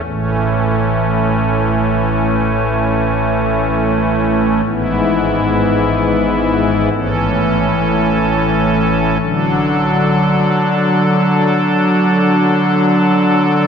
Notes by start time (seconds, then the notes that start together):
0.05 A1 A2 E3 A3 C#4
4.65 G#1 G#2 E3 B3 E4
6.92 A1 A2 E3 C#4 A4
9.22 D3 F#3 D4 A4